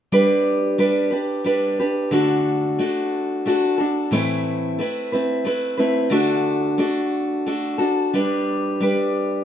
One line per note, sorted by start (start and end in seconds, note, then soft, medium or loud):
0.12 0.77 G3 medium
0.12 0.78 D4 medium
0.12 0.78 G4 medium
0.12 0.79 B4 medium
0.78 1.12 G3 medium
0.78 1.12 D4 medium
0.78 1.11 G4 medium
0.78 1.09 B4 medium
1.11 1.44 D4 soft
1.11 1.44 G4 soft
1.11 1.45 B4 soft
1.44 1.78 G3 medium
1.44 1.79 D4 medium
1.44 1.78 G4 medium
1.44 1.78 B4 medium
1.79 2.11 D4 soft
1.79 2.13 G4 soft
1.79 2.13 B4 soft
2.11 2.78 D3 medium
2.11 2.78 A3 medium
2.11 2.78 D4 medium
2.11 2.79 F#4 medium
2.11 2.81 A4 medium
2.79 3.45 A3 medium
2.79 3.45 D4 medium
2.79 3.46 F#4 medium
2.79 3.47 A4 medium
3.46 3.79 A3 medium
3.46 3.79 D4 medium
3.46 3.78 F#4 medium
3.46 3.77 A4 medium
3.78 4.12 D4 soft
3.78 4.12 F#4 soft
3.78 4.12 A4 medium
4.11 4.79 A2 medium
4.11 4.79 E3 medium
4.11 4.78 A3 medium
4.11 4.79 C4 medium
4.11 4.79 E4 medium
4.11 4.80 B4 medium
4.79 5.13 A3 medium
4.79 5.13 C4 medium
4.79 5.12 E4 medium
4.79 5.11 B4 medium
5.12 5.43 A3 soft
5.12 5.44 C4 soft
5.12 5.45 E4 soft
5.12 5.45 B4 soft
5.45 5.78 A3 medium
5.45 5.78 C4 medium
5.45 5.78 E4 medium
5.45 5.76 B4 medium
5.78 6.10 A3 soft
5.78 6.11 C4 soft
5.78 6.12 E4 medium
5.78 6.12 B4 soft
6.10 6.79 D3 medium
6.10 6.77 A3 medium
6.10 6.78 D4 medium
6.10 6.78 F#4 medium
6.10 6.79 A4 medium
6.78 7.45 A3 medium
6.78 7.46 D4 medium
6.78 7.46 F#4 medium
6.78 7.47 A4 medium
7.46 7.80 A3 medium
7.46 7.79 D4 medium
7.46 7.78 F#4 medium
7.46 7.77 A4 medium
7.78 8.13 D4 soft
7.78 8.13 F#4 soft
7.78 8.13 A4 soft
8.14 8.79 G3 medium
8.14 8.81 D4 medium
8.14 8.81 G4 medium
8.14 8.82 B4 medium
8.80 9.44 G3 medium
8.80 9.44 D4 medium
8.80 9.44 G4 medium
8.80 9.44 B4 medium